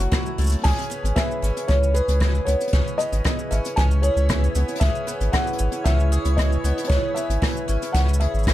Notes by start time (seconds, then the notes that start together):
Already playing: F#2 E3 A3 C#4 F#4
0.12 E3, kick, cross-stick, closed hi-hat, cabasa
0.26 cabasa
0.38 C#2 A3, closed hi-hat, cabasa
0.41 cabasa
0.44 cabasa
0.47 cabasa
0.49 closed hi-hat, cabasa
0.52 cabasa
0.58 closed hi-hat
0.62 C#2 C#3 E4 G#4 C#5 G#5, kick, closed hi-hat
0.65 closed hi-hat, cabasa
0.69 closed hi-hat
0.72 closed hi-hat
0.75 closed hi-hat
0.78 closed hi-hat, cabasa
0.81 closed hi-hat
0.90 B3, closed hi-hat, cabasa
1.04 G#1, closed hi-hat, cabasa
1.16 E3 E5, kick, cross-stick, closed hi-hat, cabasa
1.31 cabasa
1.42 G#1 C#4, closed hi-hat, cabasa
1.57 closed hi-hat, cabasa
1.68 C#2 C#3 C#5, kick, closed hi-hat, cabasa
1.83 cabasa
1.94 G#4 B4, cabasa
2.08 C#2, closed hi-hat, cabasa
2.20 E3, kick, cross-stick, closed hi-hat, cabasa
2.35 cabasa
2.45 C#2 B3 C#5, closed hi-hat, cabasa
2.61 closed hi-hat, cabasa
2.67 closed hi-hat
2.73 C#2 C#3 G#4, kick, closed hi-hat, cabasa
2.87 cabasa
2.98 B3 D#5, closed hi-hat, cabasa
3.12 G#1, closed hi-hat, cabasa
3.24 E3, kick, cross-stick, closed hi-hat, cabasa
3.39 cabasa
3.51 G#1 C#4 E5, closed hi-hat, cabasa
3.65 closed hi-hat, cabasa
3.76 C#2 C#3 G#5, kick, closed hi-hat, cabasa
3.91 cabasa
4.02 G#4 C#5, cabasa
4.16 C#2, cabasa
4.29 E3, kick, cross-stick, closed hi-hat, cabasa
4.44 cabasa
4.55 C#2 B3, closed hi-hat, cabasa
4.68 closed hi-hat, cabasa
4.76 closed hi-hat
4.80 C#2 C#3 G#4 E5, kick, closed hi-hat, cabasa
4.95 cabasa
5.07 B3, closed hi-hat, cabasa
5.20 G#1, closed hi-hat, cabasa
5.32 E3 F#5, kick, cross-stick, closed hi-hat, cabasa
5.47 cabasa
5.53 closed hi-hat
5.59 G#1 C#4, cabasa
5.72 closed hi-hat, cabasa
5.84 C#2 C#3 E5, kick, closed hi-hat, cabasa
6.00 cabasa
6.12 G#4, cabasa
6.25 C#2, closed hi-hat, cabasa
6.37 E3 D#5, kick, cross-stick, closed hi-hat, cabasa
6.52 cabasa
6.64 C#2 B3, closed hi-hat, cabasa
6.78 closed hi-hat, cabasa
6.84 C#5, closed hi-hat
6.89 C#2 C#3 G#4, kick, closed hi-hat, cabasa
7.14 B3 E5, closed hi-hat, cabasa
7.29 G#1, closed hi-hat, cabasa
7.42 E3, kick, cross-stick, closed hi-hat, cabasa
7.46 closed hi-hat
7.49 closed hi-hat
7.52 closed hi-hat
7.57 cabasa
7.68 G#1 C#4, closed hi-hat, cabasa
7.82 closed hi-hat, cabasa
7.92 C#2 C#3 F#5, kick, closed hi-hat, cabasa
8.09 cabasa
8.14 cabasa
8.20 G#4 E5, closed hi-hat
8.34 G#1, cabasa
8.39 cabasa
8.43 E3, kick, cabasa
8.48 cross-stick, closed hi-hat, cabasa